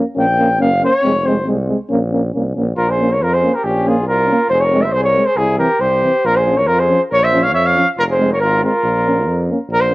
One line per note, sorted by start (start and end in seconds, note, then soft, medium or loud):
0.15 0.61 A#1 loud
0.15 0.25 A#3 medium
0.15 0.24 C#4 medium
0.20 0.59 G5 loud
0.38 0.48 A#3 medium
0.38 0.47 C#4 medium
0.59 0.84 F#1 loud
0.59 0.69 A#3 medium
0.59 0.68 C#4 medium
0.59 0.81 F5 loud
0.80 0.91 A#3 medium
0.80 0.89 C#4 medium
0.85 1.28 C#5 loud
1.02 1.50 F1 medium
1.02 1.13 G#3 medium
1.02 1.11 C4 medium
1.24 1.35 G#3 medium
1.24 1.33 C4 medium
1.24 1.48 C5 medium
1.44 1.72 C2 medium
1.44 1.56 G#3 medium
1.44 1.54 C4 medium
1.68 1.77 G#3 medium
1.68 1.77 C4 medium
1.89 2.34 A#1 loud
1.89 1.99 A#3 medium
1.89 1.98 C#4 medium
2.11 2.21 A#3 medium
2.11 2.20 C#4 medium
2.33 2.54 C2 medium
2.33 2.43 A#3 medium
2.33 2.42 C#4 medium
2.54 2.76 A#1 medium
2.54 2.65 A#3 medium
2.54 2.64 C#4 medium
2.76 3.23 A#1 medium
2.76 2.90 F4 medium
2.76 2.91 A#4 medium
2.89 3.12 G#4 medium
2.89 3.14 C5 medium
2.98 3.09 A#3 medium
2.98 3.07 C#4 medium
3.10 3.23 A#4 medium
3.10 3.24 C#5 medium
3.22 3.46 F2 medium
3.22 3.36 F4 medium
3.22 3.36 A#4 medium
3.34 3.57 G#4 medium
3.34 3.56 C5 medium
3.41 3.52 A#3 medium
3.41 3.50 C#4 medium
3.54 3.68 G4 medium
3.54 3.66 A#4 medium
3.64 4.07 A#1 medium
3.64 3.89 C#4 medium
3.64 3.89 G4 medium
3.84 3.96 A#3 medium
3.84 3.93 C#4 medium
3.84 4.08 F4 medium
3.84 4.07 G#4 medium
4.06 4.30 C2 medium
4.06 4.49 F4 medium
4.06 4.48 A#4 loud
4.27 4.36 C#4 medium
4.31 4.40 A#3 medium
4.49 4.95 F1 loud
4.49 4.66 G#4 medium
4.49 4.62 C5 loud
4.60 4.87 A#4 medium
4.60 4.83 C#5 medium
4.72 4.82 G#3 medium
4.72 4.81 C4 medium
4.82 4.98 C5 medium
4.82 4.94 E5 medium
4.93 5.17 C2 medium
4.93 5.03 C5 loud
4.97 5.06 G#4 medium
5.04 5.29 A#4 medium
5.04 5.27 C#5 loud
5.15 5.25 G#3 medium
5.15 5.24 C4 medium
5.25 5.40 G#4 medium
5.25 5.38 C5 medium
5.37 5.61 C2 medium
5.37 5.58 E4 medium
5.37 5.58 G#4 loud
5.58 5.67 E3 medium
5.58 5.68 C4 medium
5.58 5.80 G4 medium
5.58 5.82 A#4 medium
5.79 6.04 C2 medium
5.79 6.27 G4 medium
5.79 6.27 C5 loud
6.02 6.11 E3 medium
6.02 6.12 C4 medium
6.24 6.69 A#1 medium
6.24 6.38 F4 medium
6.24 6.37 A#4 loud
6.36 6.59 G#4 medium
6.36 6.59 C5 medium
6.46 6.55 F3 medium
6.46 6.56 C#4 medium
6.57 6.69 A#4 medium
6.57 6.68 C#5 medium
6.67 6.92 F2 medium
6.67 6.81 F4 medium
6.67 6.81 A#4 loud
6.79 7.01 G#4 medium
6.79 7.01 C5 medium
6.89 6.98 F3 medium
6.89 6.98 C#4 medium
7.11 7.55 A#1 medium
7.11 7.22 A#4 medium
7.11 7.25 C#5 loud
7.20 7.43 C5 medium
7.20 7.44 E5 loud
7.32 7.41 F3 medium
7.32 7.41 C#4 medium
7.42 7.52 C#5 medium
7.42 7.54 F5 loud
7.53 7.77 F2 medium
7.53 7.64 C#5 medium
7.53 7.67 E5 loud
7.64 7.87 C#5 medium
7.64 7.88 F5 medium
7.75 7.85 F3 medium
7.75 7.84 C#4 medium
7.97 8.41 F1 medium
7.97 8.03 F4 medium
7.97 8.04 A#4 loud
8.09 8.29 G#4 medium
8.09 8.31 C5 medium
8.18 8.28 G#3 medium
8.18 8.27 C4 medium
8.33 8.41 A#4 medium
8.33 8.40 C#5 medium
8.40 8.64 G#1 loud
8.40 8.62 F4 medium
8.40 8.61 A#4 loud
8.61 8.72 G#3 medium
8.61 8.70 C4 medium
8.61 9.46 F4 medium
8.61 9.46 A#4 medium
8.83 9.28 A#1 medium
9.05 9.15 A#3 medium
9.05 9.14 C#4 medium
9.26 9.50 F2 loud
9.49 9.58 A#3 medium
9.49 9.58 C#4 medium
9.69 9.95 A#1 loud
9.69 9.82 A#4 loud
9.81 9.95 C5 loud
9.90 9.95 A#3 medium
9.90 9.95 C#4 medium